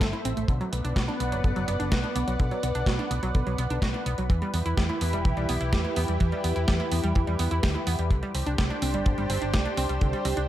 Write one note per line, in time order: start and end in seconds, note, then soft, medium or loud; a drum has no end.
0.00 0.12 G1 medium
0.00 0.45 A3 medium
0.00 0.45 A4 medium
0.00 0.10 A4 loud
0.00 0.45 C5 medium
0.00 0.45 E5 medium
0.00 kick loud
0.00 snare loud
0.00 closed hi-hat medium
0.13 0.24 E4 medium
0.13 closed hi-hat soft
0.25 0.36 A1 loud
0.25 0.30 C4 loud
0.25 closed hi-hat medium
0.37 0.47 A1 medium
0.37 0.46 A3 medium
0.37 closed hi-hat medium
0.48 0.59 B1 loud
0.48 0.60 D3 loud
0.48 4.26 B3 medium
0.48 8.07 B4 medium
0.48 4.26 D5 medium
0.48 4.26 F#5 medium
0.48 kick loud
0.48 closed hi-hat medium
0.61 0.70 F#3 loud
0.61 closed hi-hat soft
0.72 0.83 B1 medium
0.72 0.84 B3 medium
0.72 closed hi-hat medium
0.84 0.95 B1 medium
0.84 0.93 D4 loud
0.84 closed hi-hat medium
0.96 1.07 B1 loud
0.96 1.05 F#4 loud
0.96 kick loud
0.96 snare loud
0.96 closed hi-hat medium
1.08 1.17 D4 loud
1.08 closed hi-hat soft
1.20 1.31 B1 medium
1.20 1.29 B3 medium
1.20 closed hi-hat medium
1.32 1.43 F#1 medium
1.32 1.41 F#3 loud
1.32 closed hi-hat medium
1.44 1.55 F#1 loud
1.44 1.49 D3 medium
1.44 kick loud
1.44 closed hi-hat medium
1.56 1.67 F#1 medium
1.56 1.65 F#3 loud
1.56 closed hi-hat soft
1.68 1.78 F#1 medium
1.68 1.73 B3 loud
1.68 closed hi-hat medium
1.80 1.90 F#1 medium
1.80 1.89 D4 loud
1.80 closed hi-hat medium
1.92 2.02 B1 medium
1.92 2.01 F#4 loud
1.92 kick loud
1.92 snare loud
1.92 closed hi-hat medium
2.04 2.15 D4 medium
2.04 closed hi-hat soft
2.15 2.26 B1 medium
2.15 2.21 B3 loud
2.15 closed hi-hat medium
2.27 2.38 B1 medium
2.27 2.36 F#3 medium
2.27 closed hi-hat medium
2.39 2.50 B1 loud
2.39 2.51 D3 loud
2.39 kick loud
2.39 closed hi-hat medium
2.51 2.60 F#3 loud
2.51 closed hi-hat soft
2.63 2.74 B1 loud
2.63 2.74 B3 medium
2.63 closed hi-hat medium
2.75 2.86 B1 medium
2.75 2.84 D4 loud
2.75 closed hi-hat medium
2.86 2.97 B1 loud
2.86 2.96 F#4 loud
2.86 kick loud
2.86 snare loud
2.86 closed hi-hat medium
2.99 3.08 D4 loud
2.99 closed hi-hat soft
3.11 3.21 B1 medium
3.11 3.20 B3 medium
3.11 closed hi-hat medium
3.23 3.33 B1 medium
3.23 3.32 F#3 loud
3.23 closed hi-hat medium
3.35 3.45 B1 loud
3.35 3.40 D3 medium
3.35 kick loud
3.35 closed hi-hat medium
3.47 3.57 B1 medium
3.47 3.55 F#3 loud
3.47 closed hi-hat soft
3.58 3.69 B1 medium
3.58 3.64 B3 loud
3.58 closed hi-hat medium
3.70 3.81 B1 medium
3.70 3.79 D4 loud
3.70 closed hi-hat medium
3.82 3.93 B1 loud
3.82 3.91 F#4 loud
3.82 kick loud
3.82 snare loud
3.82 closed hi-hat medium
3.94 4.05 D4 medium
3.94 closed hi-hat soft
4.06 4.17 B1 medium
4.06 4.11 B3 loud
4.06 closed hi-hat medium
4.18 4.28 B1 medium
4.18 4.27 F#3 medium
4.18 closed hi-hat soft
4.30 4.40 E2 loud
4.30 4.41 E3 loud
4.30 8.07 E3 medium
4.30 8.07 E4 medium
4.30 8.07 G4 medium
4.30 kick loud
4.30 closed hi-hat soft
4.42 4.51 G3 loud
4.42 closed hi-hat soft
4.54 4.64 E2 loud
4.54 4.65 B3 medium
4.54 open hi-hat medium
4.65 4.76 E2 medium
4.65 4.74 E4 loud
4.65 closed hi-hat soft
4.77 4.88 E2 loud
4.77 4.86 G4 loud
4.77 kick loud
4.77 snare loud
4.77 closed hi-hat soft
4.89 4.98 E4 loud
4.89 closed hi-hat soft
5.01 5.12 E2 medium
5.01 5.10 B3 medium
5.01 open hi-hat loud
5.13 5.24 E1 medium
5.13 5.22 G3 loud
5.13 closed hi-hat soft
5.25 5.36 B1 loud
5.25 5.30 E3 medium
5.25 kick loud
5.25 closed hi-hat medium
5.37 5.47 B1 medium
5.37 5.46 G3 loud
5.37 closed hi-hat soft
5.49 5.59 B1 loud
5.49 5.54 B3 loud
5.49 open hi-hat loud
5.61 5.71 B1 medium
5.61 5.70 E4 loud
5.61 closed hi-hat soft
5.73 5.83 E2 loud
5.73 5.82 G4 loud
5.73 kick loud
5.73 snare loud
5.73 closed hi-hat medium
5.85 5.96 E4 medium
5.85 closed hi-hat soft
5.96 6.07 E2 loud
5.96 6.02 B3 loud
5.96 open hi-hat loud
6.08 6.19 E2 medium
6.08 6.17 G3 medium
6.08 closed hi-hat soft
6.20 6.31 E2 loud
6.20 6.32 E3 loud
6.20 kick loud
6.20 closed hi-hat soft
6.32 6.41 G3 loud
6.32 closed hi-hat soft
6.44 6.55 E2 loud
6.44 6.55 B3 medium
6.44 open hi-hat loud
6.56 6.66 E2 medium
6.56 6.65 E4 loud
6.56 closed hi-hat medium
6.68 6.79 E2 loud
6.68 6.77 G4 loud
6.68 kick loud
6.68 snare loud
6.68 closed hi-hat soft
6.80 6.89 E4 loud
6.80 closed hi-hat soft
6.92 7.02 E2 medium
6.92 7.01 B3 medium
6.92 open hi-hat loud
7.04 7.14 E2 medium
7.04 7.12 G3 loud
7.04 closed hi-hat soft
7.15 7.26 E2 loud
7.15 7.21 E3 medium
7.15 kick loud
7.15 closed hi-hat soft
7.27 7.38 E2 medium
7.27 7.36 G3 loud
7.27 closed hi-hat soft
7.39 7.50 E2 medium
7.39 7.45 B3 loud
7.39 open hi-hat loud
7.51 7.62 E2 medium
7.51 7.60 E4 loud
7.51 closed hi-hat soft
7.63 7.74 D2 loud
7.63 7.72 G4 loud
7.63 kick loud
7.63 snare loud
7.63 open hi-hat medium
7.75 7.86 E4 medium
7.75 closed hi-hat soft
7.87 7.97 E2 loud
7.87 7.92 B3 loud
7.87 open hi-hat loud
7.99 8.09 E2 medium
7.99 8.08 G3 medium
7.99 closed hi-hat medium
8.10 8.21 C2 loud
8.10 8.22 D3 loud
8.10 10.48 D4 medium
8.10 10.48 G4 medium
8.10 10.48 C5 loud
8.10 kick loud
8.10 closed hi-hat soft
8.23 8.32 G3 loud
8.23 closed hi-hat soft
8.35 8.45 C2 medium
8.35 8.46 C4 medium
8.35 open hi-hat loud
8.46 8.57 C2 medium
8.46 8.55 D4 loud
8.46 closed hi-hat medium
8.58 8.69 C2 loud
8.58 8.67 G4 loud
8.58 kick loud
8.58 snare loud
8.58 closed hi-hat medium
8.70 8.79 D4 loud
8.70 closed hi-hat soft
8.82 8.93 C2 medium
8.82 8.91 C4 medium
8.82 open hi-hat loud
8.94 9.04 G1 medium
8.94 9.03 G3 loud
8.94 closed hi-hat medium
9.06 9.17 G1 loud
9.06 9.11 D3 medium
9.06 kick loud
9.06 closed hi-hat medium
9.18 9.28 G1 medium
9.18 9.27 G3 loud
9.18 closed hi-hat soft
9.29 9.40 G1 medium
9.29 9.35 C4 loud
9.29 open hi-hat loud
9.41 9.52 G1 medium
9.41 9.51 D4 loud
9.41 closed hi-hat soft
9.53 9.65 C2 loud
9.53 9.62 G4 loud
9.53 kick medium
9.53 snare loud
9.53 closed hi-hat medium
9.65 9.77 D4 medium
9.65 closed hi-hat soft
9.77 9.88 C2 loud
9.77 9.83 C4 loud
9.77 open hi-hat loud
9.89 10.00 C2 medium
9.89 9.98 G3 medium
9.89 closed hi-hat medium
10.01 10.12 C2 loud
10.01 10.13 D3 loud
10.01 kick loud
10.01 closed hi-hat medium
10.13 10.22 G3 loud
10.13 closed hi-hat soft
10.25 10.35 C2 loud
10.25 10.36 C4 medium
10.25 open hi-hat loud
10.37 10.47 C2 medium
10.37 10.46 D4 loud
10.37 closed hi-hat medium